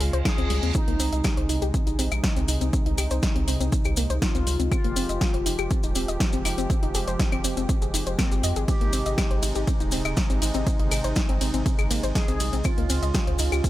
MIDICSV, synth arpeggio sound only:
0, 0, Header, 1, 2, 480
1, 0, Start_track
1, 0, Tempo, 495868
1, 724, Time_signature, 4, 2, 24, 8
1, 13259, End_track
2, 0, Start_track
2, 0, Title_t, "Synth arpeggio sound"
2, 0, Program_c, 0, 84
2, 3, Note_on_c, 0, 68, 76
2, 60, Note_off_c, 0, 68, 0
2, 128, Note_on_c, 0, 72, 99
2, 180, Note_off_c, 0, 72, 0
2, 243, Note_on_c, 0, 63, 104
2, 362, Note_off_c, 0, 63, 0
2, 368, Note_on_c, 0, 60, 99
2, 455, Note_off_c, 0, 60, 0
2, 484, Note_on_c, 0, 55, 77
2, 602, Note_off_c, 0, 55, 0
2, 609, Note_on_c, 0, 60, 99
2, 696, Note_off_c, 0, 60, 0
2, 725, Note_on_c, 0, 60, 86
2, 780, Note_off_c, 0, 60, 0
2, 849, Note_on_c, 0, 58, 105
2, 936, Note_off_c, 0, 58, 0
2, 965, Note_on_c, 0, 60, 107
2, 1083, Note_off_c, 0, 60, 0
2, 1089, Note_on_c, 0, 75, 77
2, 1175, Note_off_c, 0, 75, 0
2, 1205, Note_on_c, 0, 67, 98
2, 1323, Note_off_c, 0, 67, 0
2, 1328, Note_on_c, 0, 72, 78
2, 1381, Note_off_c, 0, 72, 0
2, 1444, Note_on_c, 0, 63, 81
2, 1562, Note_off_c, 0, 63, 0
2, 1567, Note_on_c, 0, 67, 104
2, 1678, Note_off_c, 0, 67, 0
2, 1684, Note_on_c, 0, 60, 79
2, 1740, Note_off_c, 0, 60, 0
2, 1808, Note_on_c, 0, 63, 103
2, 1895, Note_off_c, 0, 63, 0
2, 1924, Note_on_c, 0, 60, 103
2, 2017, Note_off_c, 0, 60, 0
2, 2048, Note_on_c, 0, 75, 76
2, 2135, Note_off_c, 0, 75, 0
2, 2163, Note_on_c, 0, 63, 84
2, 2220, Note_off_c, 0, 63, 0
2, 2287, Note_on_c, 0, 60, 104
2, 2375, Note_off_c, 0, 60, 0
2, 2404, Note_on_c, 0, 63, 78
2, 2522, Note_off_c, 0, 63, 0
2, 2528, Note_on_c, 0, 60, 100
2, 2615, Note_off_c, 0, 60, 0
2, 2643, Note_on_c, 0, 60, 87
2, 2700, Note_off_c, 0, 60, 0
2, 2768, Note_on_c, 0, 63, 99
2, 2855, Note_off_c, 0, 63, 0
2, 2884, Note_on_c, 0, 67, 80
2, 2940, Note_off_c, 0, 67, 0
2, 3010, Note_on_c, 0, 72, 98
2, 3061, Note_off_c, 0, 72, 0
2, 3125, Note_on_c, 0, 63, 82
2, 3180, Note_off_c, 0, 63, 0
2, 3249, Note_on_c, 0, 60, 103
2, 3336, Note_off_c, 0, 60, 0
2, 3365, Note_on_c, 0, 60, 79
2, 3458, Note_off_c, 0, 60, 0
2, 3489, Note_on_c, 0, 60, 104
2, 3576, Note_off_c, 0, 60, 0
2, 3605, Note_on_c, 0, 60, 80
2, 3660, Note_off_c, 0, 60, 0
2, 3729, Note_on_c, 0, 67, 78
2, 3781, Note_off_c, 0, 67, 0
2, 3844, Note_on_c, 0, 58, 103
2, 3962, Note_off_c, 0, 58, 0
2, 3969, Note_on_c, 0, 72, 99
2, 4021, Note_off_c, 0, 72, 0
2, 4084, Note_on_c, 0, 63, 103
2, 4202, Note_off_c, 0, 63, 0
2, 4209, Note_on_c, 0, 60, 103
2, 4296, Note_off_c, 0, 60, 0
2, 4324, Note_on_c, 0, 55, 78
2, 4442, Note_off_c, 0, 55, 0
2, 4448, Note_on_c, 0, 60, 100
2, 4535, Note_off_c, 0, 60, 0
2, 4564, Note_on_c, 0, 60, 86
2, 4620, Note_off_c, 0, 60, 0
2, 4689, Note_on_c, 0, 58, 102
2, 4775, Note_off_c, 0, 58, 0
2, 4804, Note_on_c, 0, 60, 108
2, 4922, Note_off_c, 0, 60, 0
2, 4929, Note_on_c, 0, 75, 75
2, 5015, Note_off_c, 0, 75, 0
2, 5045, Note_on_c, 0, 67, 97
2, 5163, Note_off_c, 0, 67, 0
2, 5169, Note_on_c, 0, 72, 75
2, 5221, Note_off_c, 0, 72, 0
2, 5285, Note_on_c, 0, 63, 80
2, 5403, Note_off_c, 0, 63, 0
2, 5409, Note_on_c, 0, 67, 106
2, 5519, Note_off_c, 0, 67, 0
2, 5525, Note_on_c, 0, 60, 81
2, 5581, Note_off_c, 0, 60, 0
2, 5649, Note_on_c, 0, 63, 103
2, 5736, Note_off_c, 0, 63, 0
2, 5765, Note_on_c, 0, 60, 102
2, 5858, Note_off_c, 0, 60, 0
2, 5889, Note_on_c, 0, 75, 80
2, 5975, Note_off_c, 0, 75, 0
2, 6005, Note_on_c, 0, 63, 82
2, 6061, Note_off_c, 0, 63, 0
2, 6129, Note_on_c, 0, 60, 101
2, 6216, Note_off_c, 0, 60, 0
2, 6245, Note_on_c, 0, 63, 76
2, 6363, Note_off_c, 0, 63, 0
2, 6369, Note_on_c, 0, 60, 105
2, 6456, Note_off_c, 0, 60, 0
2, 6484, Note_on_c, 0, 60, 86
2, 6540, Note_off_c, 0, 60, 0
2, 6608, Note_on_c, 0, 63, 103
2, 6695, Note_off_c, 0, 63, 0
2, 6724, Note_on_c, 0, 68, 79
2, 6780, Note_off_c, 0, 68, 0
2, 6848, Note_on_c, 0, 72, 101
2, 6901, Note_off_c, 0, 72, 0
2, 6964, Note_on_c, 0, 63, 83
2, 7020, Note_off_c, 0, 63, 0
2, 7089, Note_on_c, 0, 60, 105
2, 7176, Note_off_c, 0, 60, 0
2, 7204, Note_on_c, 0, 60, 81
2, 7297, Note_off_c, 0, 60, 0
2, 7329, Note_on_c, 0, 60, 102
2, 7416, Note_off_c, 0, 60, 0
2, 7446, Note_on_c, 0, 60, 81
2, 7501, Note_off_c, 0, 60, 0
2, 7569, Note_on_c, 0, 68, 77
2, 7621, Note_off_c, 0, 68, 0
2, 7685, Note_on_c, 0, 63, 78
2, 7778, Note_off_c, 0, 63, 0
2, 7809, Note_on_c, 0, 72, 77
2, 7861, Note_off_c, 0, 72, 0
2, 7925, Note_on_c, 0, 58, 105
2, 7980, Note_off_c, 0, 58, 0
2, 8049, Note_on_c, 0, 67, 78
2, 8136, Note_off_c, 0, 67, 0
2, 8165, Note_on_c, 0, 75, 80
2, 8258, Note_off_c, 0, 75, 0
2, 8289, Note_on_c, 0, 68, 103
2, 8376, Note_off_c, 0, 68, 0
2, 8406, Note_on_c, 0, 60, 86
2, 8461, Note_off_c, 0, 60, 0
2, 8528, Note_on_c, 0, 58, 102
2, 8615, Note_off_c, 0, 58, 0
2, 8645, Note_on_c, 0, 60, 108
2, 8763, Note_off_c, 0, 60, 0
2, 8769, Note_on_c, 0, 75, 75
2, 8856, Note_off_c, 0, 75, 0
2, 8884, Note_on_c, 0, 67, 98
2, 9002, Note_off_c, 0, 67, 0
2, 9008, Note_on_c, 0, 72, 80
2, 9060, Note_off_c, 0, 72, 0
2, 9125, Note_on_c, 0, 63, 79
2, 9243, Note_off_c, 0, 63, 0
2, 9249, Note_on_c, 0, 67, 105
2, 9359, Note_off_c, 0, 67, 0
2, 9365, Note_on_c, 0, 60, 82
2, 9420, Note_off_c, 0, 60, 0
2, 9489, Note_on_c, 0, 63, 106
2, 9576, Note_off_c, 0, 63, 0
2, 9604, Note_on_c, 0, 60, 98
2, 9697, Note_off_c, 0, 60, 0
2, 9729, Note_on_c, 0, 75, 75
2, 9816, Note_off_c, 0, 75, 0
2, 9845, Note_on_c, 0, 63, 82
2, 9901, Note_off_c, 0, 63, 0
2, 9969, Note_on_c, 0, 60, 101
2, 10056, Note_off_c, 0, 60, 0
2, 10085, Note_on_c, 0, 63, 80
2, 10203, Note_off_c, 0, 63, 0
2, 10208, Note_on_c, 0, 60, 103
2, 10295, Note_off_c, 0, 60, 0
2, 10325, Note_on_c, 0, 60, 83
2, 10380, Note_off_c, 0, 60, 0
2, 10449, Note_on_c, 0, 63, 104
2, 10536, Note_off_c, 0, 63, 0
2, 10565, Note_on_c, 0, 68, 82
2, 10621, Note_off_c, 0, 68, 0
2, 10689, Note_on_c, 0, 72, 103
2, 10741, Note_off_c, 0, 72, 0
2, 10805, Note_on_c, 0, 63, 81
2, 10861, Note_off_c, 0, 63, 0
2, 10929, Note_on_c, 0, 60, 105
2, 11016, Note_off_c, 0, 60, 0
2, 11045, Note_on_c, 0, 60, 80
2, 11138, Note_off_c, 0, 60, 0
2, 11169, Note_on_c, 0, 60, 105
2, 11256, Note_off_c, 0, 60, 0
2, 11285, Note_on_c, 0, 60, 82
2, 11341, Note_off_c, 0, 60, 0
2, 11409, Note_on_c, 0, 68, 76
2, 11461, Note_off_c, 0, 68, 0
2, 11525, Note_on_c, 0, 58, 101
2, 11643, Note_off_c, 0, 58, 0
2, 11649, Note_on_c, 0, 72, 99
2, 11701, Note_off_c, 0, 72, 0
2, 11764, Note_on_c, 0, 63, 103
2, 11882, Note_off_c, 0, 63, 0
2, 11888, Note_on_c, 0, 60, 103
2, 11975, Note_off_c, 0, 60, 0
2, 12005, Note_on_c, 0, 55, 79
2, 12123, Note_off_c, 0, 55, 0
2, 12128, Note_on_c, 0, 60, 103
2, 12215, Note_off_c, 0, 60, 0
2, 12244, Note_on_c, 0, 60, 82
2, 12300, Note_off_c, 0, 60, 0
2, 12368, Note_on_c, 0, 58, 101
2, 12455, Note_off_c, 0, 58, 0
2, 12484, Note_on_c, 0, 60, 104
2, 12602, Note_off_c, 0, 60, 0
2, 12608, Note_on_c, 0, 75, 75
2, 12695, Note_off_c, 0, 75, 0
2, 12724, Note_on_c, 0, 67, 101
2, 12842, Note_off_c, 0, 67, 0
2, 12849, Note_on_c, 0, 72, 77
2, 12901, Note_off_c, 0, 72, 0
2, 12964, Note_on_c, 0, 63, 80
2, 13082, Note_off_c, 0, 63, 0
2, 13088, Note_on_c, 0, 67, 103
2, 13198, Note_off_c, 0, 67, 0
2, 13204, Note_on_c, 0, 60, 82
2, 13259, Note_off_c, 0, 60, 0
2, 13259, End_track
0, 0, End_of_file